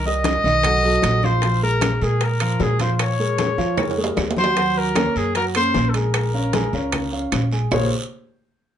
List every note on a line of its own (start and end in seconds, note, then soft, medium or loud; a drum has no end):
0.00 0.38 C2 medium
0.05 0.37 G3 medium
0.05 0.38 G4 medium
0.05 0.38 A#4 medium
0.05 1.26 D#5 loud
0.05 high conga soft
0.24 high bongo medium
0.24 high conga loud
0.24 high timbale medium
0.24 short guiro medium
0.44 0.99 B1 medium
0.44 0.61 D#3 medium
0.44 0.61 D#4 medium
0.44 0.61 D#5 medium
0.44 high bongo soft
0.44 high conga soft
0.44 short guiro medium
0.63 0.80 F#3 medium
0.63 0.81 F#4 medium
0.63 0.81 A4 medium
0.63 high bongo medium
0.63 high conga soft
0.63 low conga medium
0.63 high timbale medium
0.63 long guiro medium
0.63 claves medium
0.83 1.16 F#3 medium
0.83 1.17 F#4 medium
0.83 1.17 A4 medium
0.83 high bongo soft
0.83 high conga soft
1.02 1.96 A#1 medium
1.02 high bongo soft
1.02 low bongo medium
1.02 high conga medium
1.02 high timbale medium
1.02 short guiro medium
1.02 claves medium
1.23 1.39 F3 medium
1.23 1.40 F4 medium
1.23 1.63 C5 loud
1.23 1.40 F5 medium
1.23 high bongo soft
1.23 high conga medium
1.23 short guiro medium
1.42 1.59 F3 medium
1.42 1.59 F4 medium
1.42 1.60 F5 medium
1.42 high bongo medium
1.42 high conga soft
1.42 high timbale medium
1.42 long guiro medium
1.62 1.95 G#3 medium
1.62 1.95 G#4 medium
1.62 2.05 A#4 loud
1.62 1.95 A#4 medium
1.62 high conga soft
1.81 high bongo medium
1.81 high conga loud
1.81 high timbale medium
1.81 short guiro medium
1.81 claves medium
2.01 2.56 A#2 loud
2.01 2.34 G#3 medium
2.01 2.34 G#4 medium
2.01 2.25 G#4 medium
2.01 2.34 A#4 medium
2.01 high bongo soft
2.01 short guiro medium
2.21 2.64 A#4 medium
2.21 high bongo medium
2.21 high conga soft
2.21 high timbale medium
2.21 long guiro medium
2.40 2.57 F3 medium
2.40 2.57 F4 medium
2.40 2.57 F5 medium
2.40 high bongo soft
2.40 high conga soft
2.40 high timbale medium
2.40 claves medium
2.60 3.53 A#2 medium
2.60 2.76 G#3 medium
2.60 2.77 G#4 medium
2.60 2.83 G#4 medium
2.60 2.77 A#4 medium
2.60 high bongo soft
2.60 low bongo medium
2.60 high conga medium
2.60 short guiro medium
2.79 3.12 F3 medium
2.79 3.13 F4 medium
2.79 2.94 C5 medium
2.79 3.13 F5 medium
2.79 high bongo soft
2.79 high conga medium
2.79 high timbale medium
2.79 short guiro medium
2.94 3.02 C5 medium
2.99 4.18 C#5 medium
2.99 high bongo medium
2.99 high conga soft
2.99 high timbale medium
2.99 long guiro medium
2.99 claves medium
3.19 3.51 G#3 medium
3.19 3.52 G#4 medium
3.19 3.52 A#4 medium
3.19 high conga soft
3.38 high bongo medium
3.38 high conga loud
3.38 high timbale medium
3.38 short guiro medium
3.58 4.13 F2 medium
3.58 3.74 F3 medium
3.58 3.74 F4 medium
3.58 3.74 F5 medium
3.58 high bongo soft
3.58 high conga soft
3.58 short guiro medium
3.77 3.94 G#3 medium
3.77 3.94 G#4 medium
3.77 3.95 A#4 medium
3.77 high bongo medium
3.77 high conga soft
3.77 low conga medium
3.77 high timbale medium
3.77 long guiro medium
3.77 claves medium
3.91 high timbale medium
3.97 4.30 G#3 medium
3.97 4.30 G#4 medium
3.97 4.30 A#4 medium
3.97 high bongo soft
3.97 high conga soft
4.04 low timbale medium
4.17 5.10 D#2 medium
4.17 high bongo soft
4.17 low bongo medium
4.17 high conga medium
4.17 low timbale medium
4.17 short guiro medium
4.17 claves medium
4.31 low timbale medium
4.36 4.53 F#3 medium
4.36 4.53 F#4 medium
4.36 4.79 C5 loud
4.36 4.53 F#5 medium
4.36 high bongo soft
4.36 high conga medium
4.36 short guiro medium
4.44 low timbale medium
4.56 4.89 F#3 medium
4.56 4.89 F#4 medium
4.56 4.89 F#5 medium
4.56 high bongo medium
4.56 high conga soft
4.56 high timbale medium
4.56 long guiro medium
4.76 5.19 A#4 loud
4.76 high conga soft
4.95 5.28 A#3 medium
4.95 5.28 A#4 medium
4.95 5.29 C#5 medium
4.95 high bongo medium
4.95 high conga loud
4.95 high timbale medium
4.95 short guiro medium
4.95 claves medium
5.16 5.71 F#2 medium
5.16 5.36 G#4 medium
5.16 high bongo soft
5.16 short guiro medium
5.35 5.52 F#3 medium
5.35 5.52 F#4 medium
5.35 5.45 A#4 loud
5.35 5.52 F#5 medium
5.35 high bongo medium
5.35 high conga soft
5.35 high timbale medium
5.35 long guiro medium
5.55 5.88 A#3 medium
5.55 5.88 C#4 medium
5.55 5.88 A#4 medium
5.55 5.91 C5 loud
5.55 high bongo soft
5.55 high conga soft
5.55 high timbale medium
5.55 claves medium
5.74 6.67 A#1 medium
5.74 high bongo soft
5.74 low bongo medium
5.74 high conga medium
5.74 short guiro medium
5.89 5.98 A4 medium
5.94 6.26 G#3 medium
5.94 6.27 G#4 medium
5.94 7.33 A#4 medium
5.94 6.27 G#5 medium
5.94 high bongo soft
5.94 high timbale medium
5.94 short guiro medium
6.14 high bongo medium
6.14 high conga soft
6.14 high timbale medium
6.14 long guiro medium
6.14 claves medium
6.34 6.50 C#4 medium
6.34 6.50 C#5 medium
6.34 6.50 F5 medium
6.34 high conga soft
6.53 6.70 G#3 medium
6.53 6.70 G#4 medium
6.53 6.70 G#5 medium
6.53 high bongo medium
6.53 high conga medium
6.53 high timbale medium
6.53 short guiro medium
6.73 7.28 C#2 medium
6.73 7.06 C#4 medium
6.73 7.06 C#5 medium
6.73 7.06 F5 medium
6.73 high bongo soft
6.73 high conga soft
6.73 short guiro medium
6.92 high bongo medium
6.92 high conga soft
6.92 low conga medium
6.92 high timbale medium
6.92 long guiro medium
6.92 claves medium
7.12 7.45 C#4 medium
7.12 7.45 C#5 medium
7.12 7.45 F5 medium
7.12 high bongo soft
7.12 high conga soft
7.32 7.67 A#1 medium
7.32 high bongo soft
7.32 low bongo medium
7.32 high conga medium
7.32 high timbale medium
7.32 short guiro medium
7.32 claves medium
7.52 7.68 G#3 medium
7.52 7.68 G#4 medium
7.52 7.68 G#5 medium
7.52 high bongo soft
7.52 short guiro medium
7.71 7.90 A#1 medium
7.71 7.90 A#3 medium
7.71 7.90 F4 medium
7.71 7.90 G#4 medium
7.71 7.90 A#4 medium
7.71 7.91 C5 medium
7.71 7.90 C#5 medium
7.71 low bongo medium
7.71 low conga loud
7.71 low timbale medium
7.71 long guiro loud
7.71 claves medium